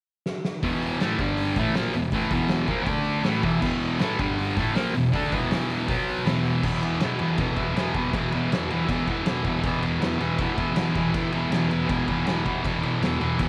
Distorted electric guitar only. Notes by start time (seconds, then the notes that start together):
0.63 E2 B2 E3
1.01 A2 E3 A3
1.19 G2 D3 G3
1.58 A2 E3 A3
1.75 A#2 F3 A#3
1.93 E2 B2
2.13 A2 E3 A3
2.31 E2 B2 E3
2.68 A#2 F3 A#3
2.86 D3 A3 D4
3.24 A2 E3 A3
3.43 E2 B2 E3
3.61 E2 B2 E3
4.00 A2 E3 A3
4.19 G2 D3 G3
4.57 A2 E3 A3
4.75 A#2 F3 A#3
4.94 E2 B2
5.12 D3 A3 D4
5.32 E2 B2 E3
5.88 B2 F#3 B3
6.25 E2 B2 E3
6.63 E2 B2 E3
6.82 B2 E3
7.01 E2 B2 E3
7.20 E2 B2 E3
7.39 E2 B2 E3
7.58 E2 B2 E3
7.77 E2 B2 E3
7.95 B2 E3
8.13 E2 B2 E3
8.32 B2 E3
8.50 E2 B2 E3
8.70 E2 B2 E3
8.88 E2 B2 E3
9.07 E2 B2 E3
9.25 E2 B2 E3
9.45 B2 E3
9.62 E2 B2 E3
9.81 B2 E3
10.00 E2 B2 E3
10.19 E2 B2 E3
10.38 E2 B2 E3
10.55 E2 B2 E3
10.75 E2 B2 E3
10.93 B2 E3
11.13 E2 B2 E3
11.33 B2 E3
11.51 E2 B2 E3
11.70 E2 B2 E3
11.87 E2 B2 E3
12.08 E2 B2 E3
12.26 E2 B2 E3
12.46 B2 E3
12.64 E2 B2 E3
12.83 B2 E3
13.01 E2 B2 E3
13.20 E2 B2 E3
13.39 E2 B2
13.43 E3